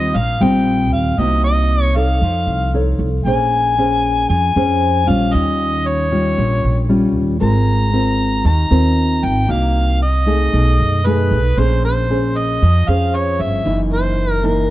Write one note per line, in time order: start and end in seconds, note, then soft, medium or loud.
0.00 0.11 D#2 medium
0.00 0.13 D#3 medium
0.00 0.15 G3 soft
0.00 0.15 C4 soft
0.00 0.15 F4 medium
0.00 0.18 D#5 medium
0.15 0.39 A#1 medium
0.15 1.17 A#2 medium
0.15 0.45 F5 medium
0.41 0.92 A#1 medium
0.41 1.14 G3 medium
0.41 1.15 C4 medium
0.41 1.15 F4 medium
0.41 0.92 G5 medium
0.92 1.17 D#2 medium
0.92 1.20 F5 medium
1.18 2.18 C2 medium
1.18 2.20 C3 soft
1.18 1.92 A#3 soft
1.18 1.92 D#4 soft
1.18 1.93 F#4 medium
1.18 1.43 D#5 medium
1.44 1.83 D#5 medium
1.83 1.98 C#5 medium
1.96 2.70 D#4 soft
1.96 2.70 A4 medium
1.96 2.70 C#5 soft
1.96 2.74 F5 medium
2.22 2.46 F2 medium
2.22 3.24 F3 soft
2.47 2.96 C2 medium
2.74 3.07 D#4 medium
2.74 3.08 A4 medium
2.74 3.08 C#5 medium
2.99 3.24 C2 medium
3.25 4.25 A#1 medium
3.25 4.27 A#3 soft
3.25 3.74 C#4 soft
3.25 3.74 G#4 soft
3.25 3.74 C5 medium
3.25 4.26 G#5 loud
3.78 4.52 C#4 soft
3.78 4.52 G#4 soft
3.78 4.52 C5 medium
4.29 4.54 F2 medium
4.29 5.31 F3 medium
4.29 5.09 G#5 loud
4.56 5.09 F2 medium
4.56 5.04 C#4 medium
4.56 5.04 G#4 medium
4.56 5.04 C5 medium
5.07 5.32 A#1 medium
5.07 6.07 G3 medium
5.07 6.07 C#4 medium
5.07 6.07 F4 medium
5.07 5.35 F5 medium
5.33 6.34 D#2 medium
5.33 6.35 D#3 medium
5.33 5.89 D#5 medium
5.87 6.90 C#5 medium
6.11 6.85 G3 soft
6.11 6.85 C#4 soft
6.11 6.86 F4 medium
6.37 6.62 A#1 medium
6.37 7.39 A#2 medium
6.64 7.15 A#1 medium
6.89 7.37 G3 medium
6.89 7.37 C#4 medium
6.89 7.37 F4 medium
7.15 7.40 D#2 medium
7.40 8.41 G#1 medium
7.40 8.42 G#3 medium
7.40 7.88 C4 medium
7.40 7.89 F4 soft
7.40 7.89 A#4 medium
7.40 8.42 A#5 loud
7.93 8.45 C4 medium
7.93 8.45 F4 soft
7.93 8.45 A#4 medium
8.44 8.69 D#2 medium
8.44 9.46 D#3 medium
8.44 9.26 A#5 medium
8.70 9.25 D#2 medium
8.70 9.45 C4 medium
8.70 9.45 F4 medium
8.70 9.45 A#4 medium
9.23 9.48 G#1 medium
9.23 9.52 G5 medium
9.48 10.49 C2 medium
9.48 10.50 C3 medium
9.48 10.01 A#3 medium
9.48 10.01 D#4 soft
9.48 10.01 F#4 medium
9.48 10.02 F5 medium
10.03 11.07 D#5 medium
10.26 11.01 A3 soft
10.26 11.01 D#4 soft
10.26 11.01 G#4 medium
10.52 10.78 B1 medium
10.52 11.54 B2 medium
10.80 11.32 F#2 medium
11.05 11.39 A3 medium
11.05 11.39 D#4 soft
11.05 11.40 G#4 medium
11.05 11.61 B4 medium
11.31 11.55 B1 medium
11.57 12.57 A#1 medium
11.57 12.60 A#3 soft
11.57 12.06 C#4 soft
11.57 12.06 G#4 soft
11.57 12.06 C5 medium
11.57 11.84 C5 medium
11.85 12.39 C5 medium
12.10 12.62 C#4 soft
12.10 12.62 G#4 soft
12.10 12.62 C5 medium
12.37 12.91 D#5 medium
12.62 12.86 F2 medium
12.62 13.64 F3 soft
12.88 13.41 F2 medium
12.88 13.62 C#4 medium
12.88 13.62 G#4 medium
12.88 13.62 C5 medium
12.88 13.17 F5 medium
13.16 13.43 C#5 medium
13.39 13.64 G1 medium
13.39 13.78 E5 medium
13.65 14.66 F#1 medium
13.65 14.67 F#2 medium
13.65 14.40 E3 soft
13.65 14.40 A#3 soft
13.65 14.40 D#4 medium
13.94 14.32 C5 medium
14.32 14.45 A#4 medium
14.43 14.70 E3 medium
14.43 14.70 A#3 medium
14.43 14.70 D#4 soft
14.43 14.70 A#4 medium